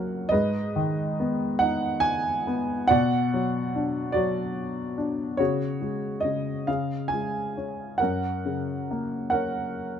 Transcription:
0.00 0.29 F#2 medium
0.00 0.35 C#3 soft
0.00 0.35 F#3 soft
0.00 0.28 A#3 soft
0.00 0.28 A#4 medium
0.00 0.35 F#5 medium
0.29 2.86 G#2 medium
0.29 1.57 B4 medium
0.29 1.64 D#5 medium
0.76 2.43 D#3 soft
1.20 2.45 B3 soft
1.59 2.86 D#4 medium
1.59 2.04 F#5 medium
2.00 2.91 G#5 loud
2.47 2.89 B3 soft
2.88 5.36 B2 medium
2.88 4.11 D5 medium
2.88 4.19 F#5 medium
3.34 4.15 F#3 soft
3.75 4.96 D4 soft
4.12 5.35 F#4 medium
4.12 5.42 D5 medium
4.16 5.36 F#3 medium
4.98 5.38 D4 soft
5.37 6.23 C#3 medium
5.37 6.63 F#4 medium
5.37 6.26 C#5 medium
5.81 6.65 G#3 soft
6.21 6.67 D#5 medium
6.25 6.66 C#3 soft
6.67 7.95 C#3 medium
6.67 7.96 G#4 soft
6.67 7.12 F5 medium
7.08 8.00 G#5 medium
7.13 7.97 G#3 soft
7.57 7.99 C#4 soft
7.98 9.27 A#4 medium
7.98 9.28 F#5 medium
8.02 10.00 F#2 soft
8.45 10.00 C#3 soft
8.91 10.00 A#3 soft
9.30 10.00 A#4 medium
9.30 10.00 F#5 medium
9.34 10.00 C#4 soft

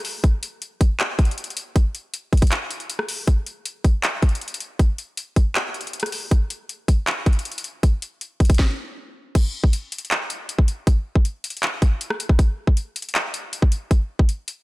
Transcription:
0.05 open hi-hat loud
0.24 kick loud
0.24 closed hi-hat medium
0.43 closed hi-hat medium
0.62 closed hi-hat medium
0.81 kick medium
0.81 closed hi-hat medium
1.00 clap loud
1.00 closed hi-hat medium
1.19 kick loud
1.19 closed hi-hat soft
1.25 closed hi-hat soft
1.31 closed hi-hat medium
1.38 closed hi-hat medium
1.44 closed hi-hat medium
1.50 closed hi-hat medium
1.57 closed hi-hat medium
1.76 kick loud
1.76 closed hi-hat medium
1.95 closed hi-hat medium
2.14 closed hi-hat medium
2.33 kick medium
2.33 closed hi-hat soft
2.37 closed hi-hat medium
2.42 kick loud
2.42 closed hi-hat medium
2.47 closed hi-hat medium
2.52 clap loud
2.52 closed hi-hat medium
2.71 closed hi-hat medium
2.80 closed hi-hat soft
2.90 closed hi-hat medium
2.99 cross-stick medium
3.09 open hi-hat medium
3.27 kick loud
3.27 closed hi-hat medium
3.46 closed hi-hat medium
3.65 closed hi-hat medium
3.84 kick medium
3.84 closed hi-hat medium
4.03 clap loud
4.03 closed hi-hat medium
4.22 kick loud
4.22 closed hi-hat soft
4.29 closed hi-hat soft
4.35 closed hi-hat medium
4.41 closed hi-hat medium
4.48 closed hi-hat medium
4.54 closed hi-hat medium
4.60 closed hi-hat medium
4.79 kick loud
4.79 closed hi-hat medium
4.98 closed hi-hat medium
5.17 closed hi-hat medium
5.36 kick medium
5.36 closed hi-hat medium
5.55 clap loud
5.55 closed hi-hat medium
5.74 closed hi-hat soft
5.81 closed hi-hat soft
5.87 closed hi-hat medium
5.93 closed hi-hat medium
6.00 cross-stick medium
6.00 closed hi-hat medium
6.06 closed hi-hat medium
6.12 open hi-hat medium
6.31 kick loud
6.31 closed hi-hat medium
6.50 closed hi-hat medium
6.69 closed hi-hat medium
6.88 kick medium
6.88 closed hi-hat medium
7.07 clap loud
7.07 closed hi-hat medium
7.26 kick loud
7.26 closed hi-hat soft
7.33 closed hi-hat soft
7.39 closed hi-hat medium
7.45 closed hi-hat medium
7.52 closed hi-hat medium
7.58 closed hi-hat medium
7.64 closed hi-hat medium
7.83 kick loud
7.83 closed hi-hat medium
8.02 closed hi-hat medium
8.21 closed hi-hat medium
8.40 kick medium
8.40 closed hi-hat soft
8.45 closed hi-hat medium
8.50 kick loud
8.50 closed hi-hat medium
8.54 closed hi-hat medium
8.59 kick loud
8.59 snare medium
9.35 kick loud
9.35 closed hi-hat medium
9.35 crash loud
9.64 kick loud
9.73 closed hi-hat medium
9.92 closed hi-hat medium
9.98 closed hi-hat medium
10.05 closed hi-hat soft
10.11 clap loud
10.11 closed hi-hat medium
10.30 closed hi-hat medium
10.49 closed hi-hat medium
10.59 kick loud
10.68 closed hi-hat medium
10.87 kick loud
10.87 closed hi-hat medium
11.15 kick loud
11.25 closed hi-hat medium
11.44 closed hi-hat medium
11.50 closed hi-hat medium
11.57 closed hi-hat soft
11.63 clap loud
11.63 closed hi-hat medium
11.82 kick loud
11.82 closed hi-hat medium
12.01 closed hi-hat medium
12.10 cross-stick loud
12.20 closed hi-hat medium
12.29 kick loud
12.39 kick loud
12.39 closed hi-hat medium
12.67 kick medium
12.77 closed hi-hat medium
12.96 closed hi-hat medium
13.02 closed hi-hat medium
13.09 closed hi-hat soft
13.15 clap loud
13.15 closed hi-hat medium
13.34 closed hi-hat medium
13.53 closed hi-hat medium
13.62 kick loud
13.72 closed hi-hat medium
13.91 kick loud
13.91 closed hi-hat medium
14.19 kick loud
14.29 closed hi-hat medium
14.48 closed hi-hat medium

